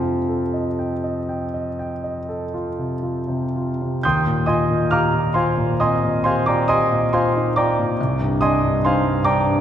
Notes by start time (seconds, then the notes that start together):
Already playing: F2 C3 F3
0.02 F4
0.29 A4
0.54 D#5
0.79 G5
1.04 D#5
1.29 G5
1.54 D#5
1.79 G5
2.04 D#5
2.29 A4
2.54 F4
2.79 C3
3.03 F4
3.28 C3
3.56 F4
3.82 C3
4.03 D#2 G5 C6 D#6 G6
4.27 A#2
4.46 F4 D#5 G#5 C6 D#6
4.70 A#2
4.91 G4 F5 A#5 D6 F6
5.14 A#2
5.34 F4 C5 F5 G#5 C6
5.57 A#2
5.80 C4 D#5 G#5 C6 D#6
6.03 A#2
6.24 G4 C5 F5 G#5 C6
6.46 F4 D5 G5 A#5 D6
6.68 G4 D#5 G#5 C6 D#6
6.91 A#2
7.13 F4 C5 F5 G#5 C6
7.37 D#4
7.56 F4 D5 G5 A#5 D6
7.79 A#2
8.00 C2
8.20 G2
8.41 D4 D#5 G#5 C6 D#6
8.64 G2
8.85 D#4 C5 F5 G#5 C6
9.06 G2
9.24 D4 D5 G5 A#5 D6
9.47 G2